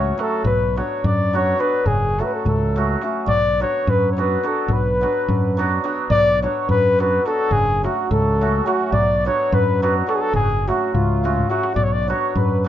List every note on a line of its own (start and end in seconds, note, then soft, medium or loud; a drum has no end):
0.00 0.12 C#2 medium
0.00 0.16 F#3 medium
0.00 0.12 A3 medium
0.00 0.12 C#4 medium
0.00 0.13 F#4 medium
0.00 0.15 C#5 medium
0.00 0.22 C#5 medium
0.06 darbuka tek soft
0.18 0.50 F#3 medium
0.18 0.38 A3 medium
0.18 0.38 C#4 medium
0.18 0.39 F#4 medium
0.18 0.45 A4 medium
0.18 0.46 A4 medium
0.18 darbuka tek medium
0.32 darbuka tek soft
0.44 0.80 B1 medium
0.44 0.76 B4 medium
0.44 darbuka dum medium
0.76 1.32 F#3 medium
0.76 0.97 B3 medium
0.76 0.98 D4 medium
0.76 0.98 F#4 medium
0.76 1.07 C#5 medium
0.76 1.04 C#5 medium
0.76 darbuka tek medium
0.91 darbuka tek soft
1.04 1.53 F#2 medium
1.04 1.37 D5 medium
1.04 1.35 D5 medium
1.04 darbuka dum medium
1.33 1.57 F#3 medium
1.33 1.53 B3 medium
1.33 1.54 D4 medium
1.33 1.54 F#4 medium
1.33 1.62 C#5 medium
1.33 1.61 C#5 medium
1.33 darbuka tek medium
1.58 1.91 F#3 medium
1.58 1.79 B3 medium
1.58 1.79 D4 medium
1.58 1.79 F#4 medium
1.58 1.88 B4 medium
1.58 1.86 B4 medium
1.58 darbuka tek medium
1.74 darbuka tek soft
1.86 2.22 F#1 medium
1.86 2.21 G#4 loud
1.86 2.19 G#4 medium
1.86 darbuka dum medium
2.02 darbuka tek soft
2.18 2.75 F#3 medium
2.18 2.39 A3 medium
2.18 2.39 C#4 medium
2.18 2.40 F#4 medium
2.18 2.25 A4 medium
2.18 2.26 A4 medium
2.18 darbuka tek medium
2.24 2.35 B4 medium
2.24 2.32 B4 medium
2.33 2.46 A4 medium
2.33 darbuka tek soft
2.45 2.95 C#2 medium
2.45 2.99 A4 medium
2.45 3.00 A4 medium
2.45 darbuka dum medium
2.76 3.01 F#3 medium
2.76 2.95 A3 medium
2.76 2.96 C#4 medium
2.76 2.96 F#4 medium
2.76 darbuka tek medium
3.01 3.32 F#3 medium
3.01 3.22 A3 medium
3.01 3.22 C#4 medium
3.01 3.22 F#4 medium
3.01 darbuka tek medium
3.27 3.63 B1 medium
3.27 3.58 D5 medium
3.27 3.59 D5 loud
3.27 darbuka dum medium
3.44 darbuka tek soft
3.60 4.15 F#3 medium
3.60 3.80 B3 medium
3.60 3.81 D4 medium
3.60 3.81 F#4 medium
3.60 3.86 C#5 medium
3.60 3.91 C#5 medium
3.60 darbuka tek medium
3.75 darbuka tek soft
3.87 4.36 F#2 medium
3.87 4.11 B4 medium
3.87 darbuka dum medium
4.10 4.17 C#5 medium
4.10 4.22 C#5 medium
4.17 4.42 F#3 medium
4.17 4.37 B3 medium
4.17 4.37 D4 medium
4.17 4.37 F#4 medium
4.17 4.48 B4 medium
4.17 4.44 B4 medium
4.17 darbuka tek medium
4.43 4.74 F#3 medium
4.43 4.62 B3 medium
4.43 4.63 D4 medium
4.43 4.63 F#4 medium
4.43 4.70 A4 medium
4.43 4.74 A4 medium
4.43 darbuka tek medium
4.57 darbuka tek soft
4.68 5.04 B1 medium
4.68 5.60 B4 medium
4.68 darbuka dum medium
4.73 5.61 B4 medium
4.87 darbuka tek soft
5.01 5.56 F#3 medium
5.01 5.22 B3 medium
5.01 5.22 D4 medium
5.01 5.22 F#4 medium
5.01 darbuka tek medium
5.17 darbuka tek soft
5.29 5.77 F#2 medium
5.29 darbuka dum loud
5.57 5.83 F#3 medium
5.57 5.78 B3 medium
5.57 5.78 D4 medium
5.57 5.78 F#4 medium
5.57 darbuka tek medium
5.72 darbuka tek soft
5.84 6.15 F#3 medium
5.84 6.03 B3 medium
5.84 6.04 D4 medium
5.84 6.04 F#4 medium
5.84 darbuka tek medium
5.98 darbuka tek soft
6.10 6.46 B1 medium
6.10 6.41 D5 loud
6.10 6.42 D5 loud
6.10 darbuka dum medium
6.27 darbuka tek soft
6.42 6.97 F#3 medium
6.42 6.63 B3 medium
6.42 6.63 D4 medium
6.42 6.64 F#4 medium
6.42 6.67 C#5 medium
6.42 6.68 C#5 loud
6.42 darbuka tek medium
6.69 7.18 F#2 medium
6.69 6.97 B4 medium
6.69 6.98 B4 loud
6.69 darbuka dum medium
6.99 7.25 F#3 medium
6.99 7.19 B3 medium
6.99 7.19 D4 medium
6.99 7.20 F#4 medium
6.99 7.24 B4 medium
6.99 7.27 B4 medium
6.99 darbuka tek medium
7.26 7.56 F#3 medium
7.26 7.45 B3 medium
7.26 7.45 D4 medium
7.26 7.46 F#4 medium
7.26 7.51 A4 medium
7.26 7.54 A4 loud
7.26 darbuka tek medium
7.39 darbuka tek soft
7.51 7.87 F#1 medium
7.51 7.85 G#4 medium
7.51 7.84 G#4 loud
7.51 darbuka dum medium
7.68 darbuka tek soft
7.83 8.40 F#3 medium
7.83 8.05 A3 medium
7.83 8.05 C#4 medium
7.83 8.13 F#4 medium
7.83 8.09 F#4 medium
7.83 8.05 F#4 medium
7.83 darbuka tek medium
7.98 darbuka tek soft
8.11 8.60 C#2 medium
8.11 8.67 A4 medium
8.11 darbuka dum medium
8.41 8.65 F#3 medium
8.41 8.61 A3 medium
8.41 8.61 C#4 medium
8.41 8.61 F#4 medium
8.41 darbuka tek medium
8.66 8.98 F#3 medium
8.66 8.86 A3 medium
8.66 8.86 C#4 medium
8.66 8.94 F#4 medium
8.66 8.93 F#4 medium
8.66 8.87 F#4 medium
8.66 darbuka tek medium
8.80 darbuka tek soft
8.92 9.28 B1 medium
8.92 9.26 D5 loud
8.92 9.26 D5 medium
8.92 darbuka dum medium
9.10 darbuka tek soft
9.25 9.81 F#3 medium
9.25 9.46 B3 medium
9.25 9.46 D4 medium
9.25 9.47 F#4 medium
9.25 9.51 C#5 medium
9.25 9.55 C#5 medium
9.25 darbuka tek medium
9.40 darbuka tek soft
9.52 10.01 F#2 medium
9.52 9.81 B4 medium
9.52 9.83 B4 medium
9.52 darbuka dum loud
9.82 10.05 F#3 medium
9.82 10.02 B3 medium
9.82 10.02 D4 medium
9.82 10.03 F#4 medium
9.82 9.94 B4 medium
9.82 9.95 B4 medium
9.82 darbuka tek medium
10.07 10.39 F#3 medium
10.07 10.27 B3 medium
10.07 10.28 D4 medium
10.07 10.28 F#4 medium
10.07 10.14 A4 medium
10.07 10.17 A4 medium
10.07 darbuka tek medium
10.15 10.21 G#4 medium
10.15 10.22 G#4 medium
10.20 10.34 A4 medium
10.20 10.34 A4 loud
10.20 darbuka tek soft
10.34 10.70 F#1 medium
10.34 10.65 G#4 medium
10.34 10.70 G#4 loud
10.34 darbuka dum medium
10.52 darbuka tek soft
10.68 11.22 F#3 medium
10.68 10.88 A3 medium
10.68 10.88 C#4 medium
10.68 10.94 F#4 medium
10.68 10.96 F#4 medium
10.68 10.89 F#4 medium
10.68 darbuka tek medium
10.93 11.43 C#2 medium
10.93 11.49 F4 medium
10.93 11.50 F4 medium
10.93 darbuka dum medium
11.10 darbuka tek soft
11.24 11.48 F#3 medium
11.24 11.44 A3 medium
11.24 11.44 C#4 medium
11.24 11.44 F#4 medium
11.24 darbuka tek medium
11.38 darbuka dum medium
11.49 11.81 F#3 medium
11.49 11.70 A3 medium
11.49 11.70 C#4 medium
11.49 11.74 F#4 medium
11.49 11.76 F#4 medium
11.49 11.70 F#4 medium
11.49 darbuka tek medium
11.63 darbuka tek medium
11.75 12.12 B1 medium
11.75 11.85 D5 loud
11.75 11.84 D5 medium
11.75 darbuka dum medium
11.84 11.94 C#5 medium
11.84 11.92 C#5 medium
11.92 12.09 D5 medium
11.92 12.09 D5 loud
11.92 darbuka tek soft
12.08 12.63 F#3 medium
12.08 12.29 B3 medium
12.08 12.29 D4 medium
12.08 12.29 F#4 medium
12.08 12.34 C#5 medium
12.08 darbuka tek medium
12.23 darbuka tek soft
12.35 12.68 F#2 medium
12.35 12.64 B4 medium
12.35 darbuka dum medium
12.64 12.68 F#3 medium
12.64 12.68 B3 medium